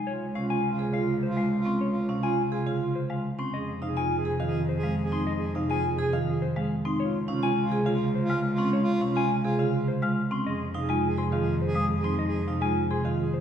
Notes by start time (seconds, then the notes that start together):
Already playing: G#3 G#5
0.07 C#2 F4 C#5
0.35 C3 C#4 F4 F5
0.50 F4 G#5
0.67 F4
0.79 C3 G#4
0.93 C#3 F4 F5
0.97 F4
1.23 C5
1.28 F4
1.37 G#3 F5
1.58 F4
1.65 C4 C#4 C6
1.81 C#5
1.88 F4
2.09 C3 C#4 F5
2.18 F4
2.23 F4 G#5
2.48 C3 F4 G#4
2.66 C#3 F4 F5
2.79 F4
2.95 C5
3.09 G#3 F4 F5
3.39 C4 C#4 C6
3.53 F2 G#4 D#5
3.82 C3 D#4 G#4 F5
3.96 F4 G#5
4.14 G#4
4.25 C3 G#4
4.40 D#3 F4 F5
4.44 G#4
4.69 C5
4.74 G#4
4.83 G#3 F5
5.04 G#4
5.12 C4 D#4 C6
5.27 D#5
5.35 G#4
5.55 C3 D#4 F5
5.65 G#4
5.70 F4 G#5
5.95 C3 G#4
6.13 D#3 F4 F5
6.25 G#4
6.42 C5
6.56 G#3 G#4 F5
6.85 C4 D#4 C6
7.00 C#2 F4 C#5
7.28 C3 C#4 F4 F5
7.43 F4 G#5
7.61 F4
7.72 C3 G#4
7.86 C#3 F4 F5
7.90 F4
8.15 C5
8.21 F4
8.29 G#3 F5 F6
8.51 F4
8.58 C4 C#4 C6
8.73 C#5
8.80 F4
9.01 C3 C#4 F5
9.11 F4
9.16 F4 G#5
9.41 F4 G#4
9.45 C3
9.59 C#3 F4 F5
9.71 F4
9.88 C5
10.01 G#3 F4 F5 F6
10.31 C4 C#4 C6
10.46 F2 G#4 D#5
10.74 C3 D#4 G#4 F5
10.89 G#3 F4 G#5
11.06 G#4
11.18 C3 G#4 C6
11.32 D#3 F4 F5
11.36 G#4
11.62 C5
11.66 G#4
11.75 G#3 F5 D#6
11.96 G#4
12.04 C4 D#4 C6
12.19 D#5
12.26 G#4
12.47 C3 D#4 F5
12.56 G#4
12.62 G#3 F4 G#5
12.86 G#4
12.91 C3 G#4 C6
13.05 D#3 F4 F5
13.17 G#4
13.34 C5